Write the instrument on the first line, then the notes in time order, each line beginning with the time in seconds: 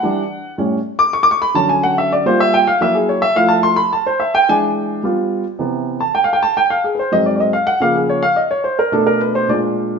upright piano
Already playing: F#5
0.03 E3 G3 D4
0.58 A2 G3 C#4
0.99 D6
1.13 C#6
1.23 D6
1.31 C#6
1.42 B5
1.54 D3 F#3 C#4 A5
1.69 G#5
1.83 F#5
1.98 E5
2.13 D5
2.26 G3 A#3 F4 C5
2.40 E5
2.54 G5
2.67 F5
2.81 F#3 A#3 E4 E5
2.95 G#4
3.09 C#5
3.22 E5
3.36 F3 A3 E4 F5
3.48 A5
3.63 C6
3.76 B5
3.93 A5
4.06 C5
4.20 E5
4.35 G5
4.49 E3 G#3 D4 G#5
5.03 G3 B3 F4
5.59 C3 E3 B3
6.00 A5
6.15 G5
6.24 F5
6.33 G5
6.43 A5
6.57 G5
6.70 F5
6.84 G#4
6.95 B4
6.99 C5
7.12 G#2 F#3 C4 D#5
7.26 D5
7.36 D5
7.40 D#5
7.53 F5
7.67 F#5
7.80 C#3 F3 A#3 F5
7.96 G#4
8.09 C#5
8.23 F5
8.36 D#5
8.51 C#5
8.64 C5
8.79 A#4
8.92 B2 A3 D4 A4
9.07 A#4
9.21 B4
9.35 C5
9.48 A#2 G#3 D4 D5